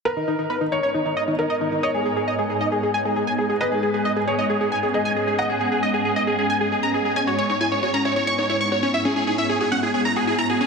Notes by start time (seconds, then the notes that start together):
0.05 G#2 G#3 B3 D#4 A#4 B4
0.16 D#4
0.27 D#4
0.39 D#4
0.50 B4
0.61 D#4
0.72 D#4 C#5
0.83 C#5
0.94 D#4
1.05 D#4
1.16 D#5
1.28 D#4
1.39 D#4 A#4
1.50 D#5
1.61 D#4
1.72 D#4
1.83 C#5 D#5
1.94 G#4
2.05 G#4
2.17 G#4
2.28 D#5
2.39 G#4
2.50 G#4
2.61 D#5
2.72 G#4
2.83 G#4
2.94 G#5
3.05 G#4
3.16 G#4
3.27 G#5
3.38 G#4
3.50 G#4
3.61 C#4 B4 D#5
3.72 G#4
3.83 G#4
3.94 G#4
4.05 D#5
4.16 G#4
4.27 G#4 C#5
4.39 D#5
4.50 G#4
4.61 G#4
4.72 G#5
4.83 G#4
4.94 G#4 D#5
5.05 G#5
5.16 G#4
5.27 G#4
5.38 D#5 F#5
5.50 G#4
5.61 G#4
5.72 G#4
5.83 D#5
5.94 G#4
6.05 G#4
6.16 D#5
6.27 G#4
6.39 G#4
6.50 G#5
6.61 G#4
6.72 G#4
6.83 A#5
6.94 G#4
7.05 G#4
7.16 G#2 B3 C#4 D#4 E4 G#5
7.27 F#4 C#5
7.38 C#5
7.50 D#4 C#5
7.61 E4 G#5
7.72 C#5
7.83 F#4 C#5
7.94 C#4 A#5
8.05 E4 C#5
8.16 C#5
8.27 C#5 C#6
8.38 D#4 C#5
8.49 E4 C#5
8.61 C#5 C#6
8.72 F#4 C#5
8.83 C#4 C#5
8.94 C#4 E4 E5
9.05 C#4 G#4
9.16 C#4 G#4
9.27 D#4 G#4
9.38 E4 E5
9.49 G#4 C#5
9.61 F#4 G#4
9.72 C#4 F#5
9.83 E4 G#4
9.94 C#4 G#4
10.05 C#4 A#5
10.16 F#4 G#4
10.27 E4 G#4
10.38 E4 A#5
10.49 F#4 G#4
10.61 C#4 G#4